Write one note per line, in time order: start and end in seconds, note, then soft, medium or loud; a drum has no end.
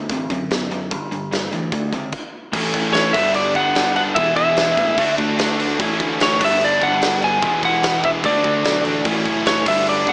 0.00 0.11 D2 medium
0.09 0.28 A1 medium
0.09 0.28 D3 medium
0.09 0.29 C4 medium
0.09 kick loud
0.09 closed hi-hat medium
0.30 0.93 F#2 medium
0.30 0.48 D3 medium
0.30 0.49 C4 medium
0.30 kick medium
0.30 closed hi-hat medium
0.50 0.69 D3 medium
0.50 0.69 B3 medium
0.50 snare loud
0.50 closed hi-hat medium
0.71 0.89 D3 medium
0.71 0.89 B3 medium
0.71 closed hi-hat medium
0.91 1.48 G1 loud
0.91 1.09 G2 medium
0.91 1.10 D3 medium
0.91 kick loud
0.91 closed hi-hat medium
1.11 1.30 G2 medium
1.11 1.30 D3 medium
1.11 closed hi-hat medium
1.32 1.50 G2 medium
1.32 1.51 E3 medium
1.32 snare loud
1.32 closed hi-hat medium
1.52 1.71 D2 medium
1.52 1.70 G2 medium
1.52 1.71 E3 medium
1.52 closed hi-hat medium
1.72 1.94 D2 medium
1.72 1.91 D3 medium
1.72 1.92 A3 medium
1.72 kick loud
1.72 closed hi-hat medium
1.92 2.11 C#2 medium
1.92 2.11 D3 medium
1.92 2.12 C4 medium
1.92 kick medium
1.92 closed hi-hat medium
2.12 kick loud
2.12 crash medium
2.53 2.72 A1 loud
2.53 2.95 A2 medium
2.53 2.93 E3 medium
2.53 2.77 A3 medium
2.53 3.14 C#4 medium
2.53 3.14 E4 medium
2.53 3.13 A4 medium
2.53 3.14 E5 medium
2.53 kick loud
2.53 crash loud
2.53 crash medium
2.57 2.75 C#4 medium
2.57 2.73 E4 loud
2.74 3.11 A1 medium
2.74 2.96 C#4 medium
2.74 2.97 E4 medium
2.74 kick medium
2.74 crash medium
2.78 2.95 A3 medium
2.93 3.14 E3 medium
2.93 3.14 A3 medium
2.93 3.15 C#4 medium
2.93 3.15 C#5 medium
2.93 snare loud
2.93 crash medium
2.98 3.14 E4 medium
3.13 3.52 G1 medium
3.13 3.75 D3 medium
3.13 3.58 G3 medium
3.13 4.16 B3 medium
3.13 3.56 B3 medium
3.13 3.55 D4 medium
3.13 4.16 G4 medium
3.13 4.16 A4 medium
3.13 4.16 D5 medium
3.13 3.35 E5 medium
3.13 kick loud
3.13 crash loud
3.18 3.74 G2 medium
3.34 3.54 D5 medium
3.34 crash medium
3.55 4.13 G1 medium
3.55 3.76 B3 medium
3.55 3.77 D4 medium
3.55 3.95 F#5 loud
3.55 kick medium
3.55 crash medium
3.59 3.76 G3 medium
3.75 4.15 G2 medium
3.75 4.16 D3 medium
3.75 3.98 G3 loud
3.75 3.96 B3 medium
3.75 3.94 D4 medium
3.75 snare loud
3.75 crash medium
3.95 4.17 G3 medium
3.95 4.16 B3 medium
3.95 4.15 D4 medium
3.95 4.02 F#5 medium
3.95 crash medium
4.15 4.35 E1 loud
4.15 4.97 E2 medium
4.15 4.97 B2 medium
4.15 4.56 E3 medium
4.15 4.38 G#3 medium
4.15 4.98 B3 medium
4.15 4.37 B3 loud
4.15 4.98 E4 medium
4.15 4.98 G#4 medium
4.15 4.35 E5 loud
4.15 4.98 E5 medium
4.15 kick loud
4.15 crash medium
4.19 4.35 E4 loud
4.36 4.74 E1 medium
4.36 4.57 G#3 medium
4.36 4.58 B3 medium
4.36 4.59 E4 medium
4.36 5.14 E5 loud
4.36 kick medium
4.36 crash medium
4.57 4.97 E3 medium
4.57 4.97 G#3 medium
4.57 4.98 B3 medium
4.57 4.98 E4 medium
4.57 snare loud
4.57 crash medium
4.77 4.96 A1 loud
4.77 kick medium
4.77 crash medium
4.97 5.17 D2 loud
4.97 5.36 D3 medium
4.97 5.19 A3 loud
4.97 5.78 A3 medium
4.97 5.17 D4 loud
4.97 5.80 D4 medium
4.97 5.80 F#4 medium
4.97 5.15 F#4 loud
4.97 5.80 D5 medium
4.97 kick loud
4.97 crash medium
5.17 5.76 D2 loud
5.17 5.37 A3 medium
5.17 5.39 D4 medium
5.17 5.40 F#4 medium
5.17 kick medium
5.17 crash medium
5.38 5.78 D3 medium
5.38 5.61 A3 loud
5.38 5.59 D4 loud
5.38 5.57 F#4 loud
5.38 snare loud
5.38 crash medium
5.59 5.78 A3 medium
5.59 5.79 D4 medium
5.59 5.78 F#4 medium
5.59 crash medium
5.79 5.98 A1 loud
5.79 6.20 A2 medium
5.79 6.17 E3 medium
5.79 6.40 A3 medium
5.79 6.01 A3 medium
5.79 6.40 C#4 medium
5.79 6.00 C#4 medium
5.79 6.40 E4 medium
5.79 5.98 E4 loud
5.79 6.40 C#5 medium
5.79 kick loud
5.79 crash medium
5.99 6.37 D2 medium
5.99 6.19 A3 medium
5.99 6.20 C#4 medium
5.99 6.21 E4 medium
5.99 kick medium
5.99 crash medium
6.18 6.38 E3 medium
6.18 6.39 A3 medium
6.18 6.40 C#4 medium
6.18 snare loud
6.18 crash medium
6.22 6.39 E4 medium
6.22 6.42 C#5 medium
6.39 6.78 G1 medium
6.39 7.00 G2 medium
6.39 7.01 D3 medium
6.39 6.83 G3 medium
6.39 7.42 A3 medium
6.39 6.81 B3 medium
6.39 6.80 D4 loud
6.39 7.42 D4 medium
6.39 7.42 G4 medium
6.39 7.42 B4 medium
6.39 kick loud
6.39 crash loud
6.45 6.64 E5 loud
6.61 6.82 D5 medium
6.61 crash medium
6.81 7.38 G1 medium
6.81 7.02 G3 medium
6.81 7.03 B3 medium
6.81 7.04 D4 medium
6.81 7.24 F#5 loud
6.81 kick medium
6.81 crash medium
7.01 7.41 G2 loud
7.01 7.41 D3 loud
7.01 7.25 G3 loud
7.01 7.23 B3 loud
7.01 snare loud
7.01 crash medium
7.05 7.21 D4 loud
7.22 7.42 B3 medium
7.22 7.41 D4 medium
7.22 7.61 G#5 loud
7.22 crash medium
7.26 7.43 G3 medium
7.42 7.61 E1 loud
7.42 8.23 E2 medium
7.42 8.24 B2 medium
7.42 7.81 E3 medium
7.42 7.65 G#3 loud
7.42 8.24 G#3 medium
7.42 8.24 B3 medium
7.42 7.64 B3 medium
7.42 8.24 E4 medium
7.42 7.62 E4 loud
7.42 8.24 B4 medium
7.42 kick loud
7.42 crash medium
7.47 8.25 E3 loud
7.63 8.00 E1 loud
7.63 7.82 G#3 medium
7.63 7.84 B3 medium
7.63 7.85 E4 medium
7.63 8.06 F#5 loud
7.63 kick medium
7.63 crash medium
7.82 8.22 E3 medium
7.82 8.23 G#3 medium
7.82 8.24 B3 medium
7.82 8.24 E4 medium
7.82 snare loud
7.82 crash medium
8.04 8.22 E1 medium
8.04 8.10 E5 loud
8.04 kick loud
8.04 crash medium
8.23 8.43 D2 medium
8.23 8.62 D3 medium
8.23 8.45 A3 medium
8.23 9.04 A3 medium
8.23 9.06 D4 medium
8.23 8.44 D4 loud
8.23 9.06 F#4 medium
8.23 8.42 F#4 loud
8.23 8.82 D5 medium
8.23 9.06 D5 medium
8.23 kick loud
8.23 crash medium
8.43 8.63 D2 loud
8.43 8.64 A3 medium
8.43 8.65 D4 medium
8.43 8.65 F#4 medium
8.43 kick medium
8.43 crash medium
8.63 8.83 B1 medium
8.63 9.04 D3 medium
8.63 8.87 A3 medium
8.63 8.86 D4 loud
8.63 8.83 F#4 loud
8.63 snare loud
8.63 crash medium
8.85 9.03 A1 medium
8.85 9.06 A3 medium
8.85 9.05 D4 medium
8.85 9.04 F#4 medium
8.85 crash medium
9.05 9.24 A1 loud
9.05 9.46 A2 medium
9.05 9.45 E3 medium
9.05 9.66 A3 medium
9.05 9.28 A3 medium
9.05 9.66 C#4 medium
9.05 9.27 C#4 medium
9.05 9.66 E4 medium
9.05 9.25 E4 medium
9.05 9.66 C#5 medium
9.05 kick loud
9.05 crash medium
9.25 9.63 F#1 medium
9.25 9.46 A3 medium
9.25 9.47 C#4 medium
9.25 9.48 E4 medium
9.25 kick medium
9.25 crash medium
9.46 9.66 E3 medium
9.46 9.66 A3 medium
9.46 9.66 C#4 medium
9.46 9.65 E4 medium
9.46 9.68 C#5 medium
9.46 snare loud
9.46 crash medium
9.65 10.04 G1 medium
9.65 10.13 G2 medium
9.65 10.13 D3 medium
9.65 10.08 G3 medium
9.65 10.13 A3 medium
9.65 10.06 B3 medium
9.65 10.04 D4 medium
9.65 10.13 D4 medium
9.65 10.13 G4 medium
9.65 10.13 B4 medium
9.65 9.88 E5 medium
9.65 kick loud
9.65 crash loud
9.87 10.09 D5 medium
9.87 crash medium
10.05 10.13 G1 medium
10.05 10.13 G3 medium
10.05 10.13 B3 medium
10.05 10.13 D4 medium
10.05 10.13 F#5 medium
10.05 kick medium
10.05 crash medium